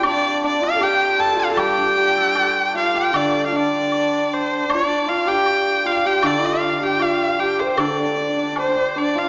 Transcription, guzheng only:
\new Staff \with { instrumentName = "Guzheng" } { \clef bass \time 2/4 \tempo 4 = 77 d4 r4 | g16 d'16 g'16 a'16 d''4 | d2~ | d4 r4 |
d2 | d2 | }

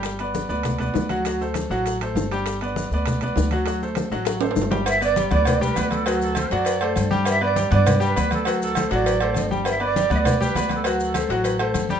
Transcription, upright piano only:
\new Staff \with { instrumentName = "Upright piano" } { \time 4/4 \key g \major \tempo 4 = 200 <g g' g''>8 <b b' d''>4 <b b' d''>4 <b b' d''>4 <fis fis' fis''>8 | <fis fis' fis''>8 <a a' c''>4 <fis fis' fis''>4 <a a' c''>4 <g g' g''>8~ | <g g' g''>8 <b b' d''>4 <b b' d''>4 <b b' d''>4 <fis fis' fis''>8 | <fis fis' fis''>8 <a a' c''>4 <fis fis' fis''>4 <a a' c''>4 <g g' g''>8 |
r8 <b b' d''>8 <g g' g''>8 <b b' d''>4 <g g' g''>8 <b b' d''>4 | <fis fis' fis''>4 <a a' c''>8 <fis fis' fis''>4 <a a' c''>4 <g g' g''>8~ | <g g' g''>8 <b b' d''>8 <g g' g''>8 <b b' d''>4 <g g' g''>8 <b b' d''>4 | <fis fis' fis''>4 <a a' c''>8 <fis fis' fis''>4 <a a' c''>4 <g g' g''>8~ |
<g g' g''>8 <b b' d''>8 <g g' g''>8 <b b' d''>4 <g g' g''>8 <b b' d''>4 | <fis fis' fis''>4 <a a' c''>8 <fis fis' fis''>4 <a a' c''>4 <g g' g''>8 | }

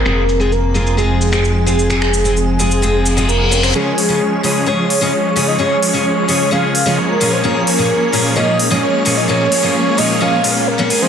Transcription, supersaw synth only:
\new Staff \with { instrumentName = "Supersaw synth" } { \time 4/4 \key bes \minor \tempo 4 = 130 r1 | r1 | <f aes des' aes' des''>8 <f aes des' aes' des''>4 <f aes des' aes' des''>8 <f aes des' aes' des''>16 r8 <f aes des' aes' ees''>16 <f aes des' aes' des''>8 <f aes des' aes' des''>8 | <f aes des' aes' des''>8 <f aes des' aes' des''>4 <f aes des' aes' des''>8 <f aes des' aes' des''>16 r8 <f aes des' aes' ees''>16 <f aes des' aes' des''>8 <f aes des' aes' des''>8 |
<f bes des' aes' des''>8 <f bes des' aes' des''>4 <f bes des' aes' des''>8 <f bes des' aes' des''>16 r8 <f bes des' aes' ees''>16 <f bes des' aes' des''>8 <f bes des' aes' des''>8 | <f bes des' aes' des''>8 <f bes des' aes' des''>4 <f bes des' aes' des''>8 <f bes des' aes' des''>16 r4. <f bes des' aes' ees''>16 | }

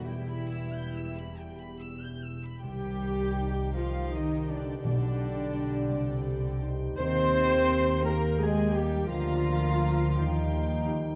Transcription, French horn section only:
\new Staff \with { instrumentName = "French horn section" } { \time 6/8 \key e \minor \tempo 4. = 56 << { g'2~ g'8 r8 | \key c \minor g'2.~ | g'2. | g'2. |
f'4. ees'4. | } \\ { e2~ e8 r8 | ees2. | g2. | bes2.~ |
bes4. g4. | } >> }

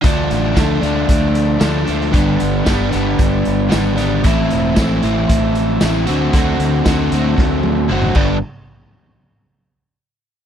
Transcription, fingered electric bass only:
\new Staff \with { instrumentName = "Fingered electric bass" } { \clef bass \time 4/4 \key d \mixolydian \tempo 4 = 115 d,8 a,,8 d,8 d,8 d,4 d,8 d,8 | g,,8 g,,8 g,,8 g,,8 g,,8 g,,8 aes,,4 | a,,8 e,,8 a,,8 a,,8 a,,4 a,,8 d,8 | d,8 d,8 d,8 d,8 d,8 d,8 fis,,8 g,,8 |
r1 | }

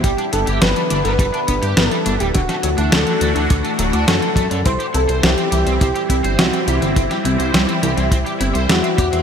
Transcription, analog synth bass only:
\new Staff \with { instrumentName = "Analog synth bass" } { \clef bass \time 4/4 \key c \lydian \tempo 4 = 104 g,,16 r16 g,,16 g,,16 g,,16 r16 g,,16 g,,16 g,,16 r16 g,,16 g,16 g,,16 r16 g,,16 d,,16 | d,,16 r16 d,16 d,16 d,16 r16 d,16 d,16 d,16 r16 d,,16 d,16 fis,16 r16 fis,16 fis,16 | c,16 r16 c,16 c,16 c,16 r16 c,16 c,16 c,16 r16 c,16 g,,16 c,16 r16 c,16 g,,16 | g,,16 r16 c,16 c,16 c,16 r16 c,16 c,16 c,16 r16 g,,16 c,16 e,16 r16 e,16 e,16 | }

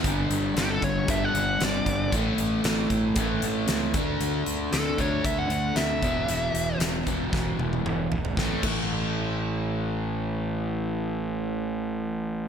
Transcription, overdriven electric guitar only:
\new Staff \with { instrumentName = "Overdriven electric guitar" } { \clef bass \time 4/4 \key g \lydian \tempo 4 = 115 <g, d g>2 <g, d g>2 | <a, e a>2 <a, e a>4. <d a d'>8~ | <d a d'>4. <d a d'>2 <e, b, e>8~ | <e, b, e>4. <e, b, e>2 r8 |
<a, e a>8 <a, e a>2.~ <a, e a>8~ | <a, e a>1 | }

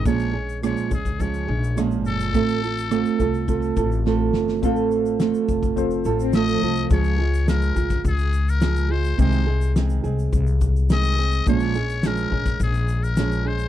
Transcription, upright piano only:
\new Staff \with { instrumentName = "Upright piano" } { \time 4/4 \key des \major \tempo 4 = 105 r1 | r1 | <c' f' a' f''>4.~ <c' f' a' f''>16 r16 <c' f' a' c''>4.~ <c' f' a' c''>16 r16 | r1 |
r1 | r1 | }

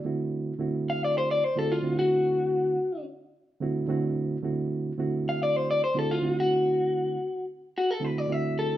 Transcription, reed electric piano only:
\new Staff \with { instrumentName = "Reed electric piano" } { \time 4/4 \key d \mixolydian \tempo 4 = 109 <d a c' e' fis'>8. r16 <d a c' e' fis'>4. r16 <d a c' e' fis'>8 <d a c' e' fis'>8.~ | <d a c' e' fis'>4 r4. <d a c' e' fis'>8 <d a c' e' fis'>8. r16 | <d a c' e' fis'>8. r16 <d a c' e' fis'>4. r16 <d a c' e' fis'>8 <d a c' e' fis'>8.~ | <d a c' e' fis'>4 r4. <d a c' e' fis'>8 <d a c' e' fis'>8. r16 | }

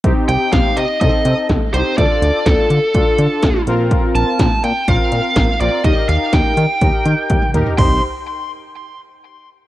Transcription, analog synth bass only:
\new Staff \with { instrumentName = "Analog synth bass" } { \clef bass \time 4/4 \key c \dorian \tempo 4 = 124 c,16 r16 c,16 r16 c,16 r16 c16 r16 c,16 r16 c16 r16 c,16 r16 c,16 r16 | d,16 r16 d,16 r16 d,16 r16 d16 r16 d,16 r16 d16 r16 d,16 r16 bes,,8~ | bes,,16 r16 bes,,16 r16 bes,,16 r16 bes,16 r16 bes,,16 r16 bes,16 r16 bes,,16 r16 bes,,16 r16 | ees,16 r16 ees,16 r16 ees,16 r16 ees16 r16 ees,16 r16 ees16 r16 ees,16 r16 ees,16 r16 |
c,8 r2. r8 | }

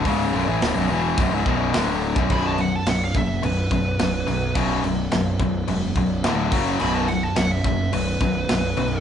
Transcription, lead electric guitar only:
\new Staff \with { instrumentName = "Lead electric guitar" } { \time 4/4 \key b \minor \tempo 4 = 107 r1 | b''16 a''16 fis''16 a''16 fis''16 eis''16 e''8 b'2 | r1 | b''16 a''16 fis''16 a''16 fis''16 e''16 e''8 b'2 | }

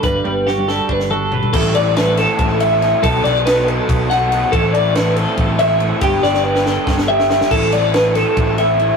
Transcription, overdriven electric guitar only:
\new Staff \with { instrumentName = "Overdriven electric guitar" } { \time 7/8 \key a \dorian \tempo 4 = 140 r2. r8 | <a, e a c' e' a'>8 <a c' e' a'>8 <a c' e' a'>4. <a c' e' a'>8 <a, e a c' e' a'>8 | <b, ees fis b ees' a'>8 <fis b ees' a'>8 <fis b ees' a'>4. <fis b ees' a'>8 <b, ees fis b ees' a'>8 | <a, e a c' e' a'>8 <a c' e' a'>8 <a c' e' a'>4. <a c' e' a'>8 <a, e a c' e' a'>8 |
<g, d g b d' g'>8 <g b d' g'>8 <g b d' g'>4. <g b d' g'>8 <g, d g b d' g'>8 | <a, e a c' e' a'>8 <a c' e' a'>8 <a c' e' a'>4. <a c' e' a'>8 <a, e a c' e' a'>8 | }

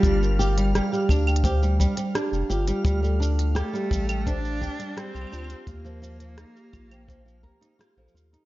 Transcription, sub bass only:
\new Staff \with { instrumentName = "Sub bass" } { \clef bass \time 4/4 \key g \minor \tempo 4 = 85 g,,4 r8 d,4 r8. f,,16 g,,16 r16 | d,4 r8 a,,4 r8. c,16 d,16 r16 | ees,4 r8 bes,,4 r8. bes,,16 ees,16 r16 | }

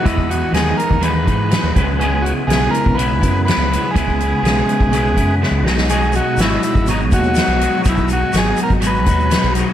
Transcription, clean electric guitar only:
\new Staff \with { instrumentName = "Clean electric guitar" } { \clef bass \time 4/4 \key b \mixolydian \tempo 4 = 123 <e gis b dis'>8 <gis b dis'>8 <e gis b dis'>4 <e gis b dis'>8 <gis b dis'>8 <e gis b dis'>8 <cis gis b e'>8 | <cis gis b e'>8 <gis b e'>8 <cis gis b e'>4 <cis gis b e'>8 <gis b e'>8 <cis gis b e'>8 <gis b e'>8 | <cis gis b e'>8 <gis b e'>8 <cis gis b e'>4 <cis gis b e'>8 <gis b e'>8 <cis gis b e'>8 <b, fis gis dis'>8 | <b, fis gis dis'>8 <fis gis dis'>8 <b, fis gis dis'>4 <b, fis gis dis'>8 <fis gis dis'>8 <b, fis gis dis'>8 <fis gis dis'>8 |
<b, fis gis dis'>8 <fis gis dis'>8 <b, fis gis dis'>4 <b, fis gis dis'>8 <fis gis dis'>8 <b, fis gis dis'>8 <fis gis dis'>8 | }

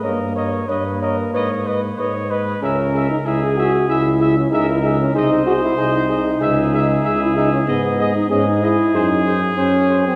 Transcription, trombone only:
\new Staff \with { instrumentName = "Trombone" } { \time 4/4 \key cis \dorian \tempo 4 = 95 ais4 ais2~ ais8 r8 | cis'8. dis'16 e'16 gis'16 fis'8 e'8. cis'16 dis'16 e'16 dis'16 cis'16 | dis'8 fis'16 e'16 dis'2~ dis'16 e'16 dis'16 cis'16 | b8. dis'16 cis'16 dis'16 e'8 dis'8. r16 cis'8. bis16 | }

